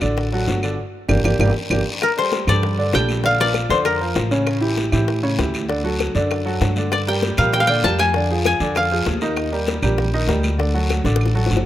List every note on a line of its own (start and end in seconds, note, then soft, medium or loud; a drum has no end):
0.01 0.45 A1 medium
0.01 0.27 D3 medium
0.01 0.27 D4 medium
0.01 0.27 D5 medium
0.01 high conga soft
0.01 short guiro medium
0.01 claves medium
0.17 high bongo medium
0.17 high conga soft
0.17 long guiro medium
0.32 0.58 F#3 medium
0.32 0.58 F#4 medium
0.32 0.58 A4 medium
0.32 high bongo soft
0.32 high conga soft
0.47 0.76 G1 medium
0.47 high bongo soft
0.47 low bongo medium
0.47 high conga medium
0.47 short guiro medium
0.63 0.76 D3 medium
0.63 0.76 D4 medium
0.63 0.77 D5 medium
0.63 high bongo soft
0.63 short guiro medium
0.63 claves medium
1.08 1.20 G1 loud
1.08 1.19 A#3 medium
1.08 1.19 D4 medium
1.08 1.19 G4 medium
1.08 low bongo loud
1.08 low conga loud
1.08 long guiro medium
1.08 claves medium
1.24 1.36 G1 medium
1.24 1.34 A#3 loud
1.24 1.34 D4 medium
1.24 1.34 G4 loud
1.24 low bongo medium
1.24 low conga loud
1.24 long guiro loud
1.24 claves medium
1.39 1.51 G1 medium
1.39 1.50 A#3 loud
1.39 1.50 D4 medium
1.39 1.50 G4 loud
1.39 low bongo loud
1.39 low conga loud
1.39 long guiro medium
1.39 claves medium
1.70 1.82 G1 medium
1.70 1.81 A#3 medium
1.70 1.81 D4 medium
1.70 1.81 G4 medium
1.70 low bongo loud
1.70 low conga medium
1.70 long guiro loud
1.70 claves loud
2.02 2.09 A#4 medium
2.02 high bongo medium
2.02 high conga soft
2.02 long guiro medium
2.02 claves medium
2.17 2.42 G3 medium
2.17 2.42 G4 medium
2.17 2.43 A4 medium
2.17 3.70 C5 medium
2.17 high conga soft
2.32 high bongo medium
2.32 high conga loud
2.32 short guiro medium
2.47 2.90 G2 medium
2.47 2.73 G3 medium
2.47 2.73 G4 medium
2.47 2.73 A4 medium
2.47 3.40 D5 medium
2.47 high conga soft
2.47 low conga medium
2.47 short guiro medium
2.47 claves medium
2.63 high bongo medium
2.63 high conga soft
2.63 low conga medium
2.63 long guiro medium
2.78 2.91 D3 medium
2.78 2.91 D4 medium
2.78 2.91 D5 medium
2.78 high conga soft
2.93 3.65 A#1 medium
2.93 3.18 G3 medium
2.93 3.19 G4 medium
2.93 3.19 A4 medium
2.93 4.29 G5 loud
2.93 high bongo medium
2.93 low bongo medium
2.93 high conga medium
2.93 short guiro medium
3.09 high conga medium
3.09 short guiro medium
3.09 claves medium
3.24 3.37 D3 medium
3.24 3.37 D4 medium
3.24 3.37 D5 medium
3.24 4.70 F5 loud
3.24 high bongo medium
3.24 high conga soft
3.24 long guiro medium
3.39 3.65 F3 medium
3.39 3.65 F4 medium
3.39 3.65 A#4 medium
3.39 5.01 D5 loud
3.39 high conga soft
3.54 high bongo medium
3.54 high conga medium
3.54 short guiro medium
3.54 claves medium
3.69 4.13 F2 medium
3.69 3.95 D3 medium
3.69 3.95 D4 medium
3.69 3.76 C5 medium
3.69 3.95 D5 medium
3.69 high bongo soft
3.69 high conga soft
3.69 short guiro medium
3.85 5.70 A#4 medium
3.85 high bongo medium
3.85 high conga soft
3.85 long guiro medium
3.85 claves medium
4.00 4.26 F3 medium
4.00 4.26 F4 medium
4.00 4.26 A#4 medium
4.00 high bongo soft
4.00 high conga soft
4.15 4.87 A1 medium
4.15 high bongo medium
4.15 low bongo medium
4.15 high conga medium
4.15 short guiro medium
4.31 4.57 C#3 medium
4.31 4.57 C#4 medium
4.31 4.57 C#5 medium
4.31 high bongo soft
4.31 high conga medium
4.31 short guiro medium
4.46 high bongo medium
4.46 high conga soft
4.46 long guiro medium
4.46 claves medium
4.61 4.87 E3 medium
4.61 4.87 E4 medium
4.61 4.87 G4 medium
4.61 high conga soft
4.77 high bongo medium
4.77 high conga loud
4.77 short guiro medium
4.92 5.36 A2 medium
4.92 5.18 E3 medium
4.92 5.18 E4 medium
4.92 5.18 G4 medium
4.92 high conga soft
4.92 low conga medium
4.92 short guiro medium
4.92 claves medium
5.08 high bongo medium
5.08 high conga soft
5.08 long guiro medium
5.23 5.36 C#3 medium
5.23 5.36 C#4 medium
5.23 5.36 C#5 medium
5.23 high conga soft
5.38 6.10 D2 medium
5.38 5.64 E3 medium
5.38 5.64 E4 medium
5.38 5.64 G4 medium
5.38 high bongo medium
5.38 low bongo medium
5.38 high conga medium
5.38 short guiro medium
5.54 high conga medium
5.54 short guiro medium
5.54 claves medium
5.69 5.82 D3 medium
5.69 5.82 D4 medium
5.69 5.82 D5 medium
5.69 high bongo medium
5.69 high conga soft
5.69 long guiro medium
5.84 6.09 F#3 medium
5.84 6.10 F#4 medium
5.84 6.10 A4 medium
5.84 high conga soft
5.99 high bongo medium
5.99 high conga medium
5.99 short guiro medium
5.99 claves medium
6.15 6.58 F#2 medium
6.15 6.41 D3 medium
6.15 6.41 D4 medium
6.15 6.41 D5 medium
6.15 high bongo soft
6.15 short guiro medium
6.30 high bongo medium
6.30 high conga soft
6.30 long guiro medium
6.30 claves medium
6.45 6.71 F#3 medium
6.45 6.71 F#4 medium
6.45 6.71 A4 medium
6.45 high bongo soft
6.45 high conga soft
6.61 7.32 G2 medium
6.61 high bongo medium
6.61 low bongo medium
6.61 high conga medium
6.61 short guiro medium
6.76 7.02 D3 medium
6.76 7.02 D4 medium
6.76 7.02 D5 medium
6.76 high bongo soft
6.76 high conga medium
6.76 short guiro medium
6.92 6.99 D5 medium
6.92 high bongo medium
6.92 high conga soft
6.92 long guiro medium
6.92 claves medium
7.07 7.32 G3 medium
7.07 7.33 G4 medium
7.07 7.33 A#4 medium
7.07 7.53 G5 medium
7.07 high conga soft
7.22 high bongo medium
7.22 high conga loud
7.22 short guiro medium
7.37 7.81 A#2 medium
7.37 7.63 G3 medium
7.37 7.63 G4 medium
7.37 7.64 A#4 medium
7.37 7.60 F5 medium
7.37 high conga soft
7.37 low conga medium
7.37 short guiro medium
7.37 claves medium
7.53 7.67 G5 loud
7.53 high bongo medium
7.53 high conga soft
7.53 low conga medium
7.53 long guiro medium
7.60 8.77 F5 medium
7.67 7.81 D3 medium
7.67 7.82 D4 medium
7.67 7.82 D5 medium
7.67 8.05 G5 loud
7.67 high conga soft
7.83 8.55 F2 medium
7.83 8.10 G3 medium
7.83 8.10 G4 medium
7.83 8.10 A#4 medium
7.83 8.05 A5 loud
7.83 high bongo medium
7.83 low bongo medium
7.83 high conga medium
7.83 short guiro medium
7.99 8.46 G#5 loud
7.99 high conga medium
7.99 short guiro medium
7.99 claves medium
8.14 8.28 D3 medium
8.14 8.28 D4 medium
8.14 8.28 D5 medium
8.14 high bongo medium
8.14 long guiro medium
8.30 8.56 F3 medium
8.30 8.56 F4 medium
8.30 8.56 G#4 medium
8.30 high conga soft
8.45 9.76 G#5 loud
8.45 high bongo medium
8.45 high conga medium
8.45 short guiro medium
8.45 claves medium
8.60 9.03 F2 medium
8.60 8.86 D3 medium
8.60 8.86 D4 medium
8.60 8.86 D5 medium
8.60 high bongo soft
8.60 high conga soft
8.60 short guiro medium
8.75 10.21 F5 medium
8.75 high bongo medium
8.75 high conga soft
8.75 long guiro medium
8.75 claves medium
8.92 9.17 F3 medium
8.92 9.17 F4 medium
8.92 9.17 G#4 medium
8.92 high bongo soft
8.92 high conga soft
9.06 9.77 D#2 medium
9.06 high bongo medium
9.06 low bongo medium
9.06 high conga medium
9.06 short guiro medium
9.21 9.47 D#3 medium
9.21 9.47 D#4 medium
9.21 9.47 D#5 medium
9.21 high bongo soft
9.21 high conga medium
9.21 short guiro medium
9.36 high bongo medium
9.36 high conga soft
9.36 long guiro medium
9.36 claves medium
9.52 9.77 G3 medium
9.52 9.77 G4 medium
9.52 9.78 A#4 medium
9.52 high conga soft
9.66 high bongo medium
9.66 high conga loud
9.66 short guiro medium
9.82 10.25 A#1 medium
9.82 10.08 G3 medium
9.82 10.08 G4 medium
9.82 10.08 A#4 medium
9.82 high conga soft
9.82 low conga medium
9.82 short guiro medium
9.82 claves medium
9.98 high bongo medium
9.98 high conga soft
9.98 low conga medium
9.98 long guiro medium
10.14 10.26 D#3 medium
10.14 10.26 D#4 medium
10.14 10.27 D#5 medium
10.14 high conga soft
10.27 10.99 D2 loud
10.27 10.54 G3 medium
10.27 10.54 G4 medium
10.27 10.54 A#4 medium
10.27 high bongo medium
10.27 low bongo medium
10.27 high conga medium
10.27 short guiro medium
10.43 high conga medium
10.43 short guiro medium
10.43 claves medium
10.58 10.71 D3 medium
10.58 10.72 D4 medium
10.58 10.72 D5 medium
10.58 high bongo medium
10.58 high conga soft
10.58 long guiro medium
10.74 11.00 F#3 medium
10.74 11.00 F#4 medium
10.74 11.00 A4 medium
10.74 high conga soft
10.90 high bongo medium
10.90 high conga medium
10.90 short guiro medium
10.90 claves medium
11.04 11.48 A1 medium
11.04 11.30 D3 medium
11.04 11.30 D4 medium
11.04 11.31 D5 medium
11.04 high bongo medium
11.04 high conga soft
11.04 short guiro medium
11.16 high bongo medium
11.21 high conga soft
11.21 long guiro medium
11.21 claves medium
11.26 low bongo loud
11.35 11.60 F#3 medium
11.35 11.61 F#4 medium
11.35 11.61 A4 medium
11.35 high conga soft
11.46 low bongo medium
11.50 11.66 G1 medium
11.50 high conga medium
11.50 short guiro medium
11.57 low bongo loud